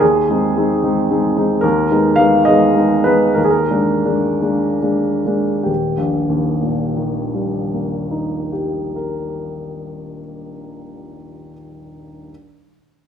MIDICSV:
0, 0, Header, 1, 2, 480
1, 0, Start_track
1, 0, Key_signature, -3, "major"
1, 0, Tempo, 541028
1, 9, Time_signature, 6, 3, 24, 8
1, 1929, Tempo, 598802
1, 2889, Tempo, 681818
1, 3369, Tempo, 760456
1, 3849, Tempo, 860832
1, 4329, Tempo, 732601
1, 7209, Tempo, 744417
1, 9145, End_track
2, 0, Start_track
2, 0, Title_t, "Upright piano"
2, 0, Program_c, 0, 0
2, 0, Control_c, 0, 64, 127
2, 0, Note_on_c, 0, 68, 58
2, 17, Note_on_c, 0, 39, 40
2, 28, Control_c, 0, 64, 0
2, 163, Control_c, 0, 64, 127
2, 247, Note_off_c, 0, 39, 0
2, 260, Note_on_c, 0, 56, 32
2, 268, Note_on_c, 0, 63, 35
2, 270, Note_on_c, 0, 60, 30
2, 468, Note_off_c, 0, 56, 0
2, 473, Note_off_c, 0, 63, 0
2, 474, Note_off_c, 0, 60, 0
2, 499, Note_on_c, 0, 56, 31
2, 510, Note_on_c, 0, 60, 33
2, 512, Note_on_c, 0, 63, 33
2, 704, Note_off_c, 0, 56, 0
2, 710, Note_off_c, 0, 60, 0
2, 711, Note_off_c, 0, 63, 0
2, 742, Note_on_c, 0, 56, 34
2, 743, Note_on_c, 0, 60, 35
2, 743, Note_on_c, 0, 63, 38
2, 945, Note_off_c, 0, 56, 0
2, 946, Note_off_c, 0, 60, 0
2, 946, Note_off_c, 0, 63, 0
2, 980, Note_on_c, 0, 56, 33
2, 987, Note_on_c, 0, 60, 33
2, 988, Note_on_c, 0, 63, 36
2, 1187, Note_off_c, 0, 56, 0
2, 1190, Note_off_c, 0, 60, 0
2, 1191, Note_off_c, 0, 63, 0
2, 1193, Note_off_c, 0, 68, 0
2, 1213, Note_on_c, 0, 60, 34
2, 1216, Note_on_c, 0, 56, 32
2, 1218, Note_on_c, 0, 63, 36
2, 1426, Note_off_c, 0, 60, 0
2, 1428, Note_off_c, 0, 56, 0
2, 1428, Note_on_c, 0, 70, 66
2, 1429, Note_off_c, 0, 63, 0
2, 1449, Note_on_c, 0, 39, 46
2, 1459, Control_c, 0, 64, 0
2, 1641, Control_c, 0, 64, 127
2, 1682, Note_off_c, 0, 39, 0
2, 1691, Note_on_c, 0, 56, 33
2, 1695, Note_on_c, 0, 59, 30
2, 1699, Note_on_c, 0, 63, 38
2, 1907, Note_off_c, 0, 56, 0
2, 1910, Note_off_c, 0, 59, 0
2, 1912, Note_off_c, 0, 63, 0
2, 1913, Note_on_c, 0, 77, 75
2, 1922, Note_off_c, 0, 70, 0
2, 1933, Note_on_c, 0, 56, 34
2, 1935, Note_on_c, 0, 59, 34
2, 1939, Note_on_c, 0, 63, 36
2, 2137, Note_off_c, 0, 56, 0
2, 2138, Note_off_c, 0, 59, 0
2, 2140, Note_off_c, 0, 63, 0
2, 2150, Note_off_c, 0, 77, 0
2, 2150, Note_on_c, 0, 75, 67
2, 2172, Note_on_c, 0, 56, 35
2, 2173, Note_on_c, 0, 59, 40
2, 2179, Note_on_c, 0, 63, 40
2, 2380, Note_off_c, 0, 56, 0
2, 2381, Note_off_c, 0, 59, 0
2, 2385, Note_off_c, 0, 63, 0
2, 2397, Note_on_c, 0, 56, 34
2, 2402, Note_on_c, 0, 59, 33
2, 2404, Note_on_c, 0, 63, 36
2, 2616, Note_off_c, 0, 56, 0
2, 2618, Note_off_c, 0, 59, 0
2, 2619, Note_off_c, 0, 63, 0
2, 2623, Note_on_c, 0, 71, 63
2, 2636, Note_off_c, 0, 75, 0
2, 2637, Note_on_c, 0, 59, 34
2, 2640, Note_on_c, 0, 56, 35
2, 2643, Note_on_c, 0, 63, 37
2, 2863, Note_off_c, 0, 59, 0
2, 2865, Note_off_c, 0, 56, 0
2, 2866, Note_off_c, 0, 63, 0
2, 2869, Note_on_c, 0, 70, 58
2, 2881, Note_off_c, 0, 71, 0
2, 2890, Note_on_c, 0, 39, 41
2, 2906, Control_c, 0, 64, 0
2, 2941, Note_off_c, 0, 70, 0
2, 2941, Note_on_c, 0, 68, 51
2, 2984, Note_on_c, 0, 70, 63
2, 3007, Note_off_c, 0, 68, 0
2, 3067, Control_c, 0, 64, 127
2, 3116, Note_off_c, 0, 39, 0
2, 3122, Note_on_c, 0, 56, 30
2, 3122, Note_on_c, 0, 58, 32
2, 3122, Note_on_c, 0, 62, 34
2, 3344, Note_off_c, 0, 56, 0
2, 3345, Note_off_c, 0, 58, 0
2, 3345, Note_off_c, 0, 62, 0
2, 3367, Note_on_c, 0, 58, 28
2, 3369, Note_on_c, 0, 56, 30
2, 3369, Note_on_c, 0, 62, 30
2, 3575, Note_off_c, 0, 58, 0
2, 3576, Note_off_c, 0, 56, 0
2, 3576, Note_off_c, 0, 62, 0
2, 3597, Note_on_c, 0, 58, 31
2, 3599, Note_on_c, 0, 56, 31
2, 3601, Note_on_c, 0, 62, 33
2, 3823, Note_off_c, 0, 58, 0
2, 3824, Note_off_c, 0, 56, 0
2, 3825, Note_off_c, 0, 62, 0
2, 3846, Note_on_c, 0, 56, 25
2, 3851, Note_on_c, 0, 58, 26
2, 3855, Note_on_c, 0, 62, 27
2, 4075, Note_off_c, 0, 56, 0
2, 4077, Note_off_c, 0, 58, 0
2, 4079, Note_off_c, 0, 62, 0
2, 4088, Note_off_c, 0, 70, 0
2, 4092, Note_on_c, 0, 56, 25
2, 4097, Note_on_c, 0, 58, 25
2, 4101, Note_on_c, 0, 62, 27
2, 4304, Note_off_c, 0, 56, 0
2, 4305, Note_on_c, 0, 67, 36
2, 4306, Note_off_c, 0, 58, 0
2, 4308, Note_off_c, 0, 62, 0
2, 4317, Note_on_c, 0, 27, 30
2, 4347, Control_c, 0, 64, 0
2, 4502, Control_c, 0, 64, 127
2, 4524, Note_on_c, 0, 34, 33
2, 4735, Note_on_c, 0, 39, 28
2, 4948, Note_on_c, 0, 46, 29
2, 5177, Note_on_c, 0, 51, 28
2, 5423, Note_on_c, 0, 55, 26
2, 5675, Note_on_c, 0, 58, 23
2, 5925, Note_on_c, 0, 63, 27
2, 6186, Note_off_c, 0, 67, 0
2, 6196, Note_on_c, 0, 67, 22
2, 6482, Note_on_c, 0, 70, 24
2, 7284, Note_off_c, 0, 27, 0
2, 7490, Note_off_c, 0, 34, 0
2, 7698, Note_off_c, 0, 39, 0
2, 7907, Note_off_c, 0, 46, 0
2, 8133, Note_off_c, 0, 51, 0
2, 8145, Note_off_c, 0, 55, 0
2, 8147, Note_off_c, 0, 63, 0
2, 8148, Note_off_c, 0, 67, 0
2, 8149, Note_off_c, 0, 58, 0
2, 8154, Note_off_c, 0, 70, 0
2, 8652, Control_c, 0, 64, 0
2, 9145, End_track
0, 0, End_of_file